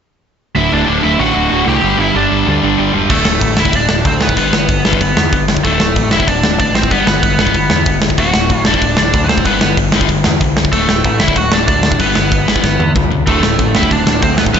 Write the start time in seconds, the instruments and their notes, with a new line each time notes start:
0.55 picked electric bass D1, distorted electric guitar D2 A2 D3, overdriven electric guitar E4 E5
0.71 picked electric bass D1, distorted electric guitar D2 A2 D3, overdriven electric guitar D4 D5
0.88 picked electric bass D1, distorted electric guitar D2 A2 D3
1.03 picked electric bass D1, distorted electric guitar D2 A2 D3, overdriven electric guitar E4 E5
1.19 picked electric bass A1, distorted electric guitar D2 A2 D3, overdriven electric guitar F#4 F#5
1.35 picked electric bass D1, distorted electric guitar D2 A2 D3
1.50 picked electric bass D1, distorted electric guitar D2 A2 D3
1.66 picked electric bass C2, distorted electric guitar D2 A2 D3, overdriven electric guitar G4 G5
1.83 picked electric bass G1, distorted electric guitar G2 D3 G3
1.98 picked electric bass G1, distorted electric guitar G2 D3 G3, overdriven electric guitar E4
2.02 overdriven electric guitar E5
2.15 picked electric bass G1, distorted electric guitar G2 D3 G3, overdriven electric guitar D4 D5
2.31 picked electric bass G1, distorted electric guitar G2 D3 G3
2.47 picked electric bass D2, distorted electric guitar G2 D3 G3
2.63 picked electric bass G1, distorted electric guitar G2 D3 G3
2.78 picked electric bass G1, distorted electric guitar G2 D3 G3
2.93 picked electric bass E1, distorted electric guitar G2 D3 G3
3.10 picked electric bass D1, distorted electric guitar D2 A2 D3, overdriven electric guitar A3 A4, kick, crash
3.25 picked electric bass D1, distorted electric guitar D2 A2, snare
3.41 picked electric bass A1, distorted electric guitar D2 A2, kick, open hi-hat
3.57 picked electric bass D1, distorted electric guitar D2 A2 D3, overdriven electric guitar E4 E5, snare
3.65 kick
3.73 picked electric bass D1, distorted electric guitar D2 A2, overdriven electric guitar D4 D5, kick, open hi-hat
3.89 picked electric bass D1, distorted electric guitar D2 A2, snare
4.05 distorted electric guitar D2 A2, picked electric bass D2, overdriven electric guitar C4 C5, kick, open hi-hat
4.21 distorted electric guitar D2 A2, overdriven electric guitar B3 B4, snare
4.29 kick
4.37 picked electric bass G1, distorted electric guitar G2 D3 G3, overdriven electric guitar B3 B4, kick, open hi-hat
4.53 picked electric bass G1, distorted electric guitar G2 D3, snare
4.69 picked electric bass G1, distorted electric guitar G2 D3, kick, open hi-hat
4.85 picked electric bass G1, distorted electric guitar G2 D3 G3, snare
4.93 kick
5.01 picked electric bass G1, distorted electric guitar G2 D3, kick, open hi-hat
5.17 picked electric bass E2, distorted electric guitar G2 D3, snare
5.32 picked electric bass G1, distorted electric guitar G2 D3, kick, open hi-hat
5.48 distorted electric guitar G2 D3, snare
5.57 kick
5.64 picked electric bass D1, distorted electric guitar D2 A2 D3, overdriven electric guitar A3 A4, kick, open hi-hat
5.80 picked electric bass D1, distorted electric guitar D2 A2, snare
5.96 picked electric bass A1, distorted electric guitar D2 A2, kick, open hi-hat
6.11 picked electric bass D1, distorted electric guitar D2 A2 D3, overdriven electric guitar E4 E5, snare
6.20 kick
6.28 picked electric bass D1, distorted electric guitar D2 A2, overdriven electric guitar D4 D5, kick, open hi-hat
6.43 picked electric bass D1, distorted electric guitar D2 A2, snare
6.59 picked electric bass A1, distorted electric guitar D2 A2, overdriven electric guitar D4 D5, kick, open hi-hat
6.74 distorted electric guitar D2 A2, overdriven electric guitar C4 C5, snare
6.83 kick
6.90 picked electric bass G1, distorted electric guitar G2 D3 G3, overdriven electric guitar B3 B4, kick, open hi-hat
7.06 picked electric bass G1, distorted electric guitar G2 D3, snare
7.23 picked electric bass G1, distorted electric guitar G2 D3, kick, open hi-hat
7.38 picked electric bass G1, distorted electric guitar G2 D3 G3, snare
7.47 kick
7.54 picked electric bass G1, distorted electric guitar G2 D3, kick, open hi-hat
7.70 picked electric bass E2, distorted electric guitar G2 D3, snare
7.86 picked electric bass E1, distorted electric guitar G2 D3, kick, open hi-hat
8.02 distorted electric guitar G2 D3, snare
8.10 kick
8.18 picked electric bass D1, distorted electric guitar D2 A2 D3, overdriven electric guitar F#4 F#5, kick, open hi-hat
8.34 picked electric bass D1, distorted electric guitar D2 A2, snare
8.50 picked electric bass A1, distorted electric guitar D2 A2, kick, open hi-hat
8.65 picked electric bass D1, distorted electric guitar D2 A2 D3, overdriven electric guitar D4 D5, snare
8.74 kick
8.81 picked electric bass D1, distorted electric guitar D2 A2, kick, open hi-hat
8.97 picked electric bass D1, distorted electric guitar D2 A2, overdriven electric guitar D4 D5, snare
9.13 picked electric bass D2, distorted electric guitar D2 A2, kick, open hi-hat
9.24 overdriven electric guitar B4
9.29 distorted electric guitar D2 A2, overdriven electric guitar C4 C5, snare
9.38 kick
9.45 picked electric bass G1, distorted electric guitar G2 D3 G3, overdriven electric guitar B3 B4, kick, open hi-hat
9.61 picked electric bass G1, distorted electric guitar G2 D3, snare
9.77 picked electric bass G1, distorted electric guitar G2 D3, kick, open hi-hat
9.92 picked electric bass G1, distorted electric guitar G2 D3 G3, snare
10.01 kick
10.08 picked electric bass G1, distorted electric guitar G2 D3, kick, open hi-hat
10.24 picked electric bass E2, distorted electric guitar G2 D3, snare
10.41 picked electric bass C2, distorted electric guitar G2 D3, kick, open hi-hat
10.57 distorted electric guitar G2 D3, snare
10.65 kick
10.73 picked electric bass D1, distorted electric guitar D2 A2 D3, overdriven electric guitar A3 A4, kick, open hi-hat
10.88 picked electric bass D1, distorted electric guitar D2 A2, snare
11.04 picked electric bass A1, distorted electric guitar D2 A2, kick, open hi-hat
11.19 picked electric bass D1, distorted electric guitar D2 A2 D3, overdriven electric guitar E4 E5, snare
11.28 kick
11.36 picked electric bass D1, distorted electric guitar D2 A2, overdriven electric guitar F#4 F#5, kick, open hi-hat
11.52 picked electric bass D1, distorted electric guitar D2 A2, overdriven electric guitar D4 D5, snare
11.68 distorted electric guitar D2 A2, picked electric bass D2, overdriven electric guitar D4 D5, kick, open hi-hat
11.83 distorted electric guitar D2 A2, snare
11.92 kick
11.99 picked electric bass G1, distorted electric guitar G2 D3 G3, overdriven electric guitar B3 B4, kick, open hi-hat
12.15 picked electric bass G1, distorted electric guitar G2 D3, snare
12.32 picked electric bass G1, distorted electric guitar G2 D3, kick, open hi-hat
12.47 picked electric bass G1, distorted electric guitar G2 D3 G3, snare
12.56 kick
12.64 picked electric bass G1, distorted electric guitar G2 D3, kick, snare
12.79 picked electric bass E2, distorted electric guitar G2 D3, high tom
12.95 picked electric bass C#2, distorted electric guitar G2 D3, kick, mid tom
13.11 distorted electric guitar G2 D3, floor tom
13.26 picked electric bass D1, distorted electric guitar D2 A2 D3, overdriven electric guitar A3 A4, kick, open hi-hat
13.43 picked electric bass D1, distorted electric guitar D2 A2, snare
13.59 picked electric bass A1, distorted electric guitar D2 A2, kick, open hi-hat
13.75 picked electric bass D1, distorted electric guitar D2 A2 D3, overdriven electric guitar E4 E5, snare
13.83 kick
13.90 picked electric bass D1, distorted electric guitar D2 A2, overdriven electric guitar D4 D5, kick, open hi-hat
14.06 picked electric bass D1, distorted electric guitar D2 A2, snare
14.22 distorted electric guitar D2 A2, picked electric bass D2, overdriven electric guitar C4 C5, kick, open hi-hat
14.38 distorted electric guitar D2 A2, overdriven electric guitar B3 B4, snare
14.46 kick
14.53 picked electric bass G1, distorted electric guitar G2 D3 G3, overdriven electric guitar B3 B4, kick, open hi-hat